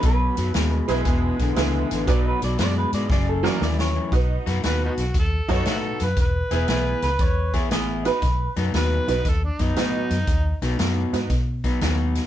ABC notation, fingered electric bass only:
X:1
M:4/4
L:1/8
Q:"Swing" 1/4=117
K:Bmix
V:1 name="Fingered electric bass" clef=bass
B,,, F,, D,, B,,, E,,, B,,, C,, A,,, | B,,, B,,, F,, G,, F,,,2 D,,2 | B,,, F,, D,, B,,, D,, F,, A,, F,, | E,,, E,,, B,,, C,, E,,2 A,,,2 |
B,,, F,, D,, B,,, D,, F,, A,, F,, | D,, B,,, F,, G,, B,,2 D,,2 |]